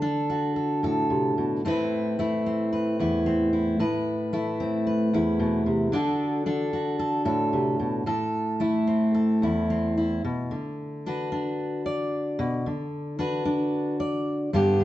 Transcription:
steel-string acoustic guitar
Already playing: D3
0.02 D4 A4
0.30 F#4
0.56 A4
0.83 A2 A4
1.10 C3
1.38 B2
1.65 A2 A3 C4 E4 B4
2.19 A3 E4
2.46 C4
2.73 B4
2.99 E2 E4
3.26 C4
3.53 E4
3.79 A2 B4
4.33 A3 E4
4.60 C4
4.87 B4
5.13 E2 E4
5.39 B2
5.66 C3
5.92 D3 D4 F#4 A4
6.46 D4 A4
6.73 F#4
6.99 A4
7.25 A2 A4
7.53 C3
7.79 B2
8.06 A2 A4
8.60 A3 E4
8.87 C4
9.15 A4
9.42 E2 E4
9.70 C4
9.97 E4
10.24 B2
10.51 D3
11.06 D4 F#4 B4
11.32 D4
11.86 D5
12.39 B2
12.66 D3
13.19 D4 F#4 B4
13.45 D4
14.00 D5
14.53 G2 D3 B3 D4 G4
14.80 D3

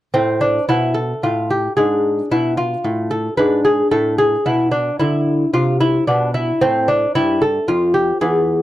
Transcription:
lute
0.14 A2 C4
0.41 D4
0.69 B2 E4
0.94 A4
1.23 A2 F4
1.50 G4
1.77 G#2 D4 G#4
2.31 B2 E4
2.57 F4
2.84 A2
3.11 A4
3.37 G#2 D4 B4
3.65 G#4
3.91 A2 A4
4.18 G#4
4.46 B2 E4
4.71 D4
5.00 D3 E4
5.54 C3 F4
5.81 E4
6.07 B2 D4
6.34 E4
6.61 A2 C4
6.88 D4
7.15 G2 E4
7.42 A4
7.68 F2 F4
7.94 G4
8.21 E2 B3 G#4

